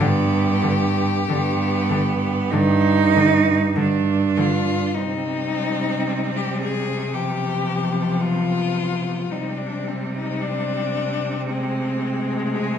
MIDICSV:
0, 0, Header, 1, 5, 480
1, 0, Start_track
1, 0, Key_signature, -3, "minor"
1, 0, Tempo, 1252610
1, 4, Time_signature, 4, 2, 24, 8
1, 1444, Tempo, 1185771
1, 1924, Tempo, 1117318
1, 2404, Tempo, 1079137
1, 5390, End_track
2, 0, Start_track
2, 0, Title_t, "Cello"
2, 0, Program_c, 0, 42
2, 3, Note_on_c, 0, 67, 100
2, 1442, Note_off_c, 0, 67, 0
2, 1687, Note_on_c, 0, 65, 95
2, 1921, Note_on_c, 0, 63, 97
2, 1928, Note_off_c, 0, 65, 0
2, 2532, Note_on_c, 0, 67, 75
2, 2539, Note_off_c, 0, 63, 0
2, 2640, Note_off_c, 0, 67, 0
2, 2643, Note_on_c, 0, 68, 89
2, 2878, Note_on_c, 0, 67, 80
2, 2884, Note_off_c, 0, 68, 0
2, 3353, Note_on_c, 0, 65, 88
2, 3360, Note_off_c, 0, 67, 0
2, 3847, Note_on_c, 0, 63, 73
2, 3854, Note_off_c, 0, 65, 0
2, 3968, Note_on_c, 0, 62, 83
2, 3975, Note_off_c, 0, 63, 0
2, 4099, Note_on_c, 0, 60, 73
2, 4105, Note_off_c, 0, 62, 0
2, 4216, Note_on_c, 0, 63, 86
2, 4223, Note_off_c, 0, 60, 0
2, 4336, Note_on_c, 0, 62, 87
2, 4342, Note_off_c, 0, 63, 0
2, 4810, Note_off_c, 0, 62, 0
2, 4812, Note_on_c, 0, 60, 82
2, 5291, Note_on_c, 0, 68, 70
2, 5298, Note_off_c, 0, 60, 0
2, 5390, Note_off_c, 0, 68, 0
2, 5390, End_track
3, 0, Start_track
3, 0, Title_t, "Cello"
3, 0, Program_c, 1, 42
3, 8, Note_on_c, 1, 59, 85
3, 434, Note_off_c, 1, 59, 0
3, 493, Note_on_c, 1, 59, 86
3, 961, Note_on_c, 1, 63, 112
3, 967, Note_off_c, 1, 59, 0
3, 1447, Note_on_c, 1, 62, 78
3, 1453, Note_off_c, 1, 63, 0
3, 1925, Note_off_c, 1, 62, 0
3, 1928, Note_on_c, 1, 60, 72
3, 2865, Note_off_c, 1, 60, 0
3, 2887, Note_on_c, 1, 59, 59
3, 3830, Note_off_c, 1, 59, 0
3, 3846, Note_on_c, 1, 60, 55
3, 5390, Note_off_c, 1, 60, 0
3, 5390, End_track
4, 0, Start_track
4, 0, Title_t, "Cello"
4, 0, Program_c, 2, 42
4, 0, Note_on_c, 2, 50, 83
4, 31, Note_off_c, 2, 50, 0
4, 241, Note_on_c, 2, 50, 68
4, 272, Note_off_c, 2, 50, 0
4, 493, Note_on_c, 2, 50, 74
4, 524, Note_off_c, 2, 50, 0
4, 727, Note_on_c, 2, 50, 74
4, 758, Note_off_c, 2, 50, 0
4, 966, Note_on_c, 2, 50, 74
4, 997, Note_off_c, 2, 50, 0
4, 1211, Note_on_c, 2, 50, 69
4, 1241, Note_off_c, 2, 50, 0
4, 1441, Note_on_c, 2, 50, 71
4, 1473, Note_off_c, 2, 50, 0
4, 1689, Note_on_c, 2, 50, 77
4, 1722, Note_off_c, 2, 50, 0
4, 1931, Note_on_c, 2, 55, 64
4, 2867, Note_off_c, 2, 55, 0
4, 2883, Note_on_c, 2, 53, 69
4, 3828, Note_off_c, 2, 53, 0
4, 3846, Note_on_c, 2, 55, 56
4, 4794, Note_off_c, 2, 55, 0
4, 4812, Note_on_c, 2, 56, 61
4, 5390, Note_off_c, 2, 56, 0
4, 5390, End_track
5, 0, Start_track
5, 0, Title_t, "Cello"
5, 0, Program_c, 3, 42
5, 3, Note_on_c, 3, 43, 99
5, 432, Note_off_c, 3, 43, 0
5, 485, Note_on_c, 3, 43, 86
5, 910, Note_off_c, 3, 43, 0
5, 961, Note_on_c, 3, 43, 103
5, 1383, Note_off_c, 3, 43, 0
5, 1438, Note_on_c, 3, 43, 85
5, 1866, Note_off_c, 3, 43, 0
5, 1923, Note_on_c, 3, 48, 62
5, 3827, Note_off_c, 3, 48, 0
5, 3842, Note_on_c, 3, 48, 62
5, 5390, Note_off_c, 3, 48, 0
5, 5390, End_track
0, 0, End_of_file